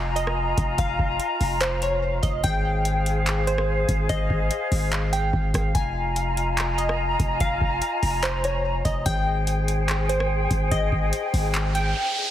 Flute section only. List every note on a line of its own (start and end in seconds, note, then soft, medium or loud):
0.00 2.41 F4 medium
0.00 2.41 D#5 medium
0.00 8.82 F5 medium
0.00 2.16 G#5 medium
0.00 2.41 A#5 medium
2.44 5.72 G#4 medium
2.44 5.72 C5 medium
5.75 9.03 F4 medium
5.75 9.03 D#5 medium
5.75 9.03 G#5 medium
5.75 9.03 A#5 medium
9.06 12.31 G#4 medium
9.06 12.31 C5 medium
9.06 12.31 G5 medium